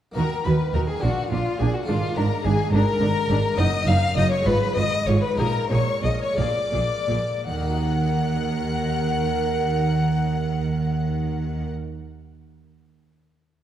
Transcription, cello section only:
0.16 D#3
0.45 D#3
0.74 D#3
1.03 A#2
1.32 A#2
1.60 A#2
1.88 G#2
2.16 G#2
2.44 G#2
2.73 G#2
3.01 G#2
3.30 G#2
3.58 F#2
3.88 F#2
4.17 F#2
4.47 G#2
4.77 G#2
5.08 G#2
5.39 A#2
5.71 A#2
6.04 A#2
6.38 A#2
6.73 A#2
7.09 A#2
7.46 D#3

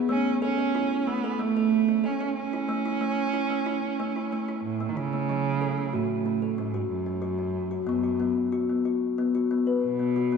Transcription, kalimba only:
0.09 A3
0.42 A4
0.58 C#4
0.75 E4
1.07 A3
1.24 A4
1.39 A3
1.57 A4
1.88 C#4
2.04 A4
2.21 C#4
2.53 E4
2.69 A3
2.86 E4
3.01 A3
3.34 E4
3.50 A3
3.66 E4
4.00 A3
4.16 E4
4.33 A3
4.48 E4
4.80 A3
4.97 E4
5.13 A3
5.29 F#3 C#4
5.61 A4
5.78 A3
5.93 F#4
6.26 C#4
6.42 A4
6.58 C#4
6.74 F#4
7.06 C#4
7.22 F#4
7.39 C#4
7.71 F#4
7.87 F#3 B3
8.03 F#4
8.20 B3
8.52 F#4
8.69 B3
8.85 F#4
9.18 B3
9.35 F#4
9.51 B3
9.67 B4
9.99 B3
10.16 F#4
10.32 B3

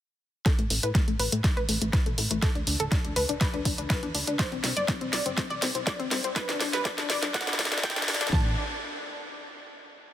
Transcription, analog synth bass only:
0.59 A1
0.70 A1
0.83 A2
1.08 A1
1.19 A1
1.32 A2
1.57 A1
1.69 A1
1.82 A1
2.06 B1
2.18 A1
2.31 A1
2.55 D2
2.67 D2
2.80 D1
3.04 D2
3.16 D2
3.29 D1
3.54 D2
3.65 D2
3.78 D2
4.03 E2
4.15 D2
4.27 D2
4.52 C2
4.64 C2
4.77 G1
5.01 C2
5.13 C2
5.26 G1
5.50 C2
5.62 C2
5.75 C2
6.00 D2
6.11 C2
6.24 C2
6.49 G1
6.61 G1
6.73 G2
6.98 G1
7.10 G1
7.23 G2
7.47 G1
7.59 G1
7.72 G1
7.96 G1
8.08 G2
8.21 G1
8.33 A1

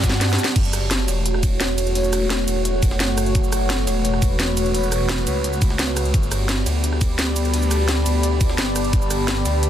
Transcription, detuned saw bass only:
Already playing: G2
0.56 F#1
1.08 E1
1.60 E1
2.48 E1
3.00 F#1
3.35 F#1
3.87 E1
4.40 E1
5.27 C#2
6.14 G1
6.66 D2
7.19 D2
8.06 D2
8.58 G1
8.93 G1
9.45 D2

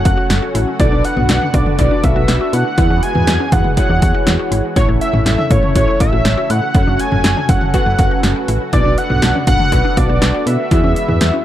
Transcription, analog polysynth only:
Already playing: C#4 F#4 A4 C#5
0.80 D4 F#4 A4 B4
1.54 D4 F#4 A4 B4
1.79 D4 F#4 A4 B4
2.78 E4 F#4 G#4 B4
3.52 E4 F#4 G#4 B4
3.77 E4 F#4 G#4 C#5
4.76 C#4 E4 A4 C#5
5.51 C#4 E4 A4 C#5
5.76 C#4 E4 A4 C#5
6.75 C#4 F#4 A4 C#5
7.49 C#4 F#4 A4 C#5
7.74 C#4 F#4 A4 B4
8.73 D4 F#4 A4 B4
9.47 D4 F#4 A4 B4
9.72 D4 F#4 A4 B4
10.71 E4 F#4 G#4 B4

